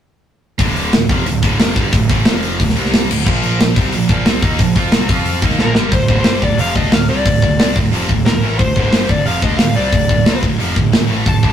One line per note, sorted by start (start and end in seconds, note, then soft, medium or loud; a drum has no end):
0.59 0.90 D1 loud
0.59 0.92 D2 medium
0.59 0.93 A2 medium
0.59 0.93 D3 loud
0.59 kick loud
0.59 open hi-hat medium
0.76 open hi-hat medium
0.93 1.08 D1 medium
0.93 1.06 D2 medium
0.93 1.07 A2 medium
0.93 snare loud
0.93 open hi-hat medium
1.09 1.25 F1 loud
1.09 1.25 F2 loud
1.09 1.26 C3 medium
1.09 1.26 F3 loud
1.09 kick loud
1.09 open hi-hat medium
1.25 1.42 D1 medium
1.25 1.39 D2 medium
1.25 1.39 A2 medium
1.25 open hi-hat medium
1.42 1.58 D1 medium
1.42 1.59 D2 medium
1.42 1.59 A2 medium
1.42 1.59 D3 medium
1.42 kick loud
1.42 open hi-hat medium
1.59 1.75 F1 medium
1.59 1.75 F2 medium
1.59 1.76 C3 medium
1.59 1.76 F3 loud
1.59 snare loud
1.59 open hi-hat medium
1.76 1.92 G1 medium
1.76 1.92 G2 medium
1.76 1.92 D3 medium
1.76 1.93 G3 medium
1.76 kick loud
1.76 open hi-hat medium
1.93 2.08 D1 medium
1.93 2.06 D2 medium
1.93 2.06 A2 medium
1.93 kick loud
1.93 open hi-hat medium
2.10 2.25 A1 medium
2.10 2.26 A2 medium
2.10 2.26 E3 loud
2.10 2.26 A3 loud
2.10 kick loud
2.10 open hi-hat medium
2.25 2.57 F1 loud
2.25 2.59 F2 medium
2.25 2.59 C3 loud
2.25 2.60 F3 loud
2.25 snare loud
2.25 open hi-hat medium
2.43 open hi-hat medium
2.60 2.75 D1 medium
2.60 2.73 D2 medium
2.60 2.73 A2 medium
2.60 kick medium
2.60 open hi-hat medium
2.69 snare soft
2.76 3.07 C2 medium
2.76 3.09 C3 medium
2.76 3.09 G3 medium
2.76 3.09 C4 medium
2.76 open hi-hat medium
2.85 snare soft
2.94 snare loud
2.94 open hi-hat medium
3.10 3.25 D1 medium
3.10 3.23 D2 medium
3.10 3.23 A2 medium
3.10 crash loud
3.26 3.57 A#1 loud
3.26 3.58 A#2 medium
3.26 3.59 F3 loud
3.26 3.60 A#3 loud
3.26 kick loud
3.43 open hi-hat medium
3.60 3.75 A#1 medium
3.60 3.73 A#2 medium
3.60 3.73 F3 medium
3.60 snare loud
3.60 open hi-hat medium
3.76 3.92 C2 medium
3.76 3.93 C3 medium
3.76 3.93 G3 loud
3.76 3.93 C4 loud
3.76 kick loud
3.76 open hi-hat medium
3.93 4.08 A#1 medium
3.93 4.07 A#2 medium
3.93 4.07 F3 medium
3.93 open hi-hat medium
4.09 4.25 A#1 medium
4.09 4.26 A#2 medium
4.09 4.26 F3 medium
4.09 4.26 A#3 loud
4.09 kick loud
4.09 open hi-hat medium
4.26 4.42 C2 loud
4.26 4.42 C3 medium
4.26 4.43 G3 loud
4.26 4.43 C4 loud
4.26 snare loud
4.26 open hi-hat medium
4.42 4.58 D#2 medium
4.42 4.59 D#3 medium
4.42 4.59 A#3 loud
4.42 4.59 D#4 loud
4.42 kick loud
4.42 open hi-hat medium
4.59 4.75 A#1 medium
4.59 4.72 A#2 medium
4.59 4.73 F3 medium
4.59 kick loud
4.59 open hi-hat medium
4.75 4.91 F2 loud
4.75 4.92 F3 loud
4.75 4.92 C4 loud
4.75 4.92 F4 loud
4.75 kick medium
4.75 open hi-hat medium
4.92 5.08 C2 medium
4.92 5.09 C3 loud
4.92 5.09 G3 medium
4.92 5.09 C4 loud
4.92 snare loud
4.92 open hi-hat medium
5.09 5.40 F2 medium
5.09 5.42 F3 medium
5.09 5.42 C4 loud
5.09 5.42 F4 loud
5.09 kick loud
5.09 open hi-hat medium
5.26 open hi-hat medium
5.42 5.58 D#2 medium
5.42 5.59 D#3 medium
5.42 5.59 A#3 loud
5.42 5.59 D#4 medium
5.42 kick loud
5.42 open hi-hat medium
5.50 snare soft
5.59 5.75 A#1 loud
5.59 5.75 A#2 loud
5.59 5.75 F3 loud
5.59 5.76 A#3 loud
5.59 5.93 A#4 medium
5.59 snare medium
5.75 5.91 G1 medium
5.75 5.92 G2 medium
5.75 5.92 D3 medium
5.75 5.92 G3 loud
5.75 snare medium
5.91 6.08 D1 medium
5.91 6.06 D2 medium
5.91 6.06 A2 medium
5.91 6.17 C5 loud
5.91 kick loud
5.91 open hi-hat medium
6.08 6.24 D1 medium
6.08 6.25 D2 loud
6.08 6.25 A2 medium
6.08 6.26 D3 loud
6.08 kick medium
6.19 6.44 C5 medium
6.24 6.41 G1 medium
6.24 6.42 G2 medium
6.24 6.42 D3 medium
6.24 6.43 G3 medium
6.24 snare loud
6.24 open hi-hat medium
6.42 6.58 D1 medium
6.42 6.56 D2 medium
6.42 6.56 A2 medium
6.42 6.60 D5 medium
6.42 kick medium
6.59 6.74 F1 medium
6.59 6.76 F2 medium
6.59 6.76 C3 medium
6.59 6.76 F3 medium
6.59 6.75 F5 loud
6.59 open hi-hat medium
6.75 6.91 D2 medium
6.75 6.92 D3 medium
6.75 6.93 A3 medium
6.75 6.93 D4 medium
6.75 6.93 D#5 medium
6.75 kick medium
6.92 7.08 D1 medium
6.92 7.06 D2 medium
6.92 7.06 A2 medium
6.92 7.09 F5 medium
6.92 snare loud
6.92 open hi-hat medium
7.09 7.25 C2 medium
7.09 7.26 C3 medium
7.09 7.26 G3 loud
7.09 7.26 C4 medium
7.09 7.72 D5 medium
7.25 7.41 D1 medium
7.25 7.40 D2 medium
7.25 7.40 A2 medium
7.25 kick loud
7.25 open hi-hat medium
7.42 7.58 D1 medium
7.42 7.56 D2 medium
7.42 7.56 A2 medium
7.42 kick medium
7.59 7.75 C2 medium
7.59 7.75 C3 medium
7.59 7.76 G3 loud
7.59 7.76 C4 loud
7.59 snare loud
7.59 open hi-hat medium
7.76 7.91 D1 medium
7.76 7.89 D2 medium
7.76 7.90 A2 medium
7.76 kick loud
7.92 8.08 F1 loud
7.92 8.08 F2 medium
7.92 8.09 C3 medium
7.92 8.09 F3 medium
7.92 open hi-hat medium
8.09 8.25 D1 medium
8.09 8.22 D2 medium
8.09 8.23 A2 medium
8.09 kick medium
8.25 8.41 D1 medium
8.25 8.39 D2 medium
8.25 8.39 A2 medium
8.25 8.57 A#4 medium
8.25 snare loud
8.25 open hi-hat soft
8.41 8.58 A1 medium
8.41 8.58 A2 medium
8.41 8.59 E3 loud
8.41 8.59 A3 medium
8.58 8.75 D1 medium
8.58 8.73 D2 medium
8.58 8.73 A2 medium
8.58 8.82 C5 medium
8.58 kick loud
8.58 open hi-hat medium
8.76 8.92 D1 loud
8.76 8.92 D2 loud
8.76 8.92 A2 loud
8.76 8.92 D3 loud
8.76 kick medium
8.83 9.10 C5 loud
8.92 9.08 G1 medium
8.92 9.09 G2 medium
8.92 9.09 D3 medium
8.92 9.09 G3 loud
8.92 snare loud
8.92 open hi-hat medium
9.09 9.25 D1 medium
9.09 9.23 D2 medium
9.09 9.23 A2 medium
9.09 9.26 D5 loud
9.09 kick medium
9.26 9.42 F1 loud
9.26 9.42 F2 loud
9.26 9.42 C3 medium
9.26 9.43 F3 medium
9.26 9.43 F5 loud
9.26 open hi-hat medium
9.42 9.58 D2 medium
9.42 9.59 D3 medium
9.42 9.59 A3 medium
9.42 9.59 D4 loud
9.42 9.58 D#5 medium
9.42 kick medium
9.58 9.75 D1 medium
9.58 9.73 D2 medium
9.58 9.74 A2 medium
9.58 9.76 F5 medium
9.58 snare loud
9.58 open hi-hat medium
9.76 9.92 C2 medium
9.76 9.92 C3 medium
9.76 9.93 G3 medium
9.76 9.93 C4 loud
9.76 10.39 D5 medium
9.92 10.08 D1 medium
9.92 10.07 D2 medium
9.92 10.07 A2 medium
9.92 kick loud
9.92 open hi-hat medium
10.09 10.25 D1 medium
10.09 10.23 D2 medium
10.09 10.24 A2 medium
10.09 kick medium
10.26 10.42 C2 medium
10.26 10.42 C3 medium
10.26 10.43 G3 loud
10.26 10.43 C4 loud
10.26 snare loud
10.26 open hi-hat medium
10.42 10.58 D1 medium
10.42 10.56 D2 medium
10.42 10.57 A2 medium
10.42 kick medium
10.59 10.75 F1 medium
10.59 10.75 F2 medium
10.59 10.75 C3 medium
10.59 10.76 F3 loud
10.59 open hi-hat soft
10.76 10.92 D1 medium
10.76 10.89 D2 medium
10.76 10.90 A2 medium
10.76 kick medium
10.92 11.09 D1 medium
10.92 11.06 D2 medium
10.92 11.06 A2 medium
10.92 snare loud
10.92 open hi-hat medium
11.10 11.26 A1 medium
11.10 11.26 A2 medium
11.10 11.26 E3 medium
11.10 11.26 A3 medium
11.26 11.42 D1 medium
11.26 11.40 D2 medium
11.26 11.40 A2 medium
11.26 11.53 A5 loud
11.26 kick loud
11.26 open hi-hat soft
11.43 11.53 D1 medium
11.43 11.53 D2 medium
11.43 11.53 A2 medium
11.43 11.53 D3 loud
11.43 kick medium